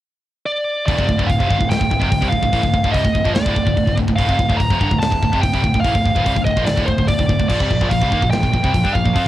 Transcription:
0.46 D5
0.86 D1 D2 A2 D5, kick, open hi-hat
0.98 F1 F2 C3, kick
1.08 D1 D2 A2, kick
1.18 D1 D2 A2, kick
1.27 D1 D2 A2 F5, kick, open hi-hat
1.39 F1 F2 C3, kick
1.50 G1 G2 D3, kick
1.59 D1 D2 A2, kick
1.69 D1 D2 A2 G5, snare, open hi-hat
1.80 D1 D2 A2, kick
1.90 D1 D2 A2, kick
2.01 F1 F2 C3, kick
2.12 D1 D2 A2, kick, open hi-hat
2.21 C2 C3 G3, kick
2.29 D1 D2 A2 F5, kick
2.43 D1 D2 A2, kick
2.52 A1 A2 E3, kick, open hi-hat
2.63 D1 D2 A2, kick
2.73 D1 D2 A2, kick
2.84 D1 D2 A2, kick
2.91 C2 C3 G3 D#5, kick, open hi-hat
3.04 D1 D2 A2, kick
3.13 D1 D2 A2, kick
3.24 A#1 A#2 F3, kick
3.34 D1 D2 A2 D5, snare, open hi-hat
3.45 D1 D2 A2, kick
3.54 D1 D2 A2, kick
3.66 D1 D2 A2, kick
3.77 D1 D2 A2, kick, open hi-hat
3.87 D1 D2 A2, kick
3.98 D1 D2 A2, kick
4.08 D1 D2 A2, kick
4.16 D1 D2 A2 F5, kick, open hi-hat
4.28 F1 F2 C3, kick
4.38 D1 D2 A2, kick
4.49 D1 D2 A2, kick
4.57 D1 D2 A2 A#5, kick, open hi-hat
4.70 F1 F2 C3, kick
4.81 G1 G2 D3, kick
4.91 D1 D2 A2, kick
5.00 D1 D2 A2 A5, snare, open hi-hat
5.12 D1 D2 A2, kick
5.22 D1 D2 A2, kick
5.32 F1 F2 C3, kick
5.41 D1 D2 A2 G5, kick, open hi-hat
5.54 C2 C3 G3, kick
5.64 D1 D2 A2, kick
5.74 D1 D2 A2, kick
5.81 A1 A2 F5, kick, open hi-hat
5.85 E3
5.94 D1 D2 A2, kick
6.05 D1 D2 A2, kick
6.15 D1 D2 A2, kick
6.26 C2 C3 G3, kick, open hi-hat
6.36 D1 D2 A2, kick
6.45 D1 D2 A2 D#5, kick
6.57 A#1 A#2 F3, kick
6.65 D1 D2 A2 D5, snare, open hi-hat
6.77 D1 D2 A2, kick
6.86 D1 D2 A2 C5, kick
6.98 D1 D2 A2, kick
7.08 D1 D2 A2 D5, kick, open hi-hat
7.19 D1 D2 A2, kick
7.29 D1 D2 A2, kick
7.39 D1 D2 A2, kick
7.47 A#1 A#2 F3 D5, kick, crash
7.59 C2 C3 G3, kick
7.70 A#1 A#2 F3, kick
7.81 A#1 A#2 F3, kick
7.89 A#1 A#2 F3 F5, kick, open hi-hat
8.01 C2 C3 G3, kick
8.12 D#2 D#3 A#3, kick
8.22 A#1 A#2 F3, kick
8.30 A#1 A#2 F3 G5, snare, open hi-hat
8.43 A#1 A#2 F3, kick
8.53 A#1 A#2 F3, kick
8.63 C2 C3 G3, kick
8.74 A#1 A#2 F3, kick, open hi-hat
8.83 G2 G3 D4, kick
8.94 A#1 A#2 F3 F5, kick
9.05 A#1 A#2 F3, kick
9.13 F2 F3 C4, kick, open hi-hat
9.24 A#2 F3

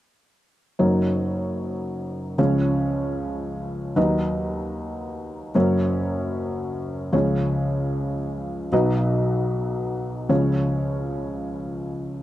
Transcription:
0.79 F#1 F#2 F#3 D#4 A#4 C#5
2.38 C#2 C#3 F3 C#4 G#4 C#5
3.96 D#2 D#3 F#3 D#4 B4 D#5
5.55 F#1 F#2 F#3 C#4 A#4 C#5
7.13 C#2 C#3 F3 C#4 G#4 C#5
8.72 B1 B2 F#3 D#4 B4 D#5
10.29 C#2 C#3 F3 C#4 G#4 C#5

